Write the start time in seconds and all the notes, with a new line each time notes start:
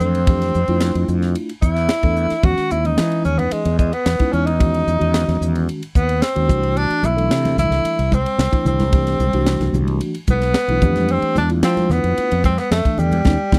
Already playing: E3 A3 D4 A4
0.00 F2 C4, hi-hat pedal
0.15 ride
0.27 E3 A3 D4 G4, kick, ride
0.42 snare, ride
0.54 F2, hi-hat pedal
0.68 F2 A3 D4 E4 F4, ride
0.80 snare, ride
0.95 F2, ride
1.08 F2, hi-hat pedal
1.22 snare, ride
1.35 ride
1.49 ride
1.62 E2 E4, kick, hi-hat pedal
1.76 snare, ride
1.89 snare, ride
2.03 E2 E3 A3 D4 A4, kick, ride
2.16 hi-hat pedal
2.30 muted fretless electric bass stroke, snare, ride
2.43 E2 D#3 G#3 C#4 F#4, kick, ride
2.58 muted fretless electric bass stroke, snare, ride
2.70 D#2 E4, hi-hat pedal
2.84 E3 G#3 C#4 D#4, ride
2.98 E3, snare, ride
3.12 ride
3.24 D#2 C#4, hi-hat pedal
3.39 E2 B3, ride
3.51 G#3, muted fretless electric bass stroke, ride
3.65 E2, ride
3.79 G#3, kick, hi-hat pedal
3.93 B3, ride
4.06 E2, snare, ride
4.19 G#3 C#4 D#4 E4, kick, ride
4.32 E2 C#4, hi-hat pedal
4.46 D#4, ride
4.59 D#3 G#3 C#4 F#4, kick, ride
4.74 ride
4.87 E2, hi-hat pedal
4.99 E2 D#3 G#3 C#4 F#4, ride
5.14 snare, ride
5.28 E2, snare, ride
5.41 E2, hi-hat pedal
5.55 ride
5.69 ride
5.83 ride
5.95 D#2 B3, kick, hi-hat pedal
6.09 ride
6.22 C4, snare, ride
6.35 D#2 D#3 G#3 C#4 F#4, ride
6.48 C2 E3 A3 D4 F#4, kick, hi-hat pedal
6.63 ride
6.77 D4, ride
6.90 muted fretless electric bass stroke, ride
7.03 B1 E4, hi-hat pedal, high conga
7.17 E3 A3 D4 A4, ride
7.30 C3, snare, ride
7.45 snare, ride, high conga
7.56 B1 E4, snare, hi-hat pedal, high conga, low conga
7.70 C2, snare, ride
7.85 ride
7.99 C2, ride
8.12 C4, kick, hi-hat pedal, high conga
8.26 ride
8.38 C2, snare, ride
8.52 E3 A3 D4 E4, muted fretless electric bass stroke, kick, ride
8.65 C2 C4, hi-hat pedal, low conga
8.80 snare, ride, high conga
8.92 E3 A3 D4 G4, kick, ride
9.07 snare, ride
9.19 C2, hi-hat pedal, high conga
9.33 C2 E3 A3 D4 F#4, ride
9.46 snare, ride
9.60 C2, snare, ride, high conga
9.73 C2, hi-hat pedal, high conga, low conga
9.88 ride
10.01 ride
10.14 ride
10.27 B1 B3, kick, hi-hat pedal, high conga
10.42 snare, ride
10.54 snare, ride
10.68 B1 E3 A3 D4 E4, ride
10.81 F2 E3 A3 D4 G4, kick, hi-hat pedal, low conga
10.96 snare, ride, high conga
11.08 C4, ride
11.22 muted fretless electric bass stroke, ride
11.35 E2 D4, hi-hat pedal, high conga
11.49 A3 D4 E4 F4, ride
11.63 F3 C4, snare, ride
11.77 snare, ride, high conga
11.90 E2 B3, snare, hi-hat pedal, low conga
12.04 F2, ride
12.18 muted fretless electric bass stroke, ride
12.31 F2, ride
12.44 C4, kick, hi-hat pedal, high conga
12.58 B3, snare, ride
12.71 F2 A3, snare, ride
12.85 E3 A3 D4 A4, kick, ride
12.98 E2 G3, hi-hat pedal, low conga
13.12 ride, high conga
13.25 D#2 B3 C#4 D#4, kick, snare, high conga
13.52 D#2 B3 C#4 D#4, kick, snare, high conga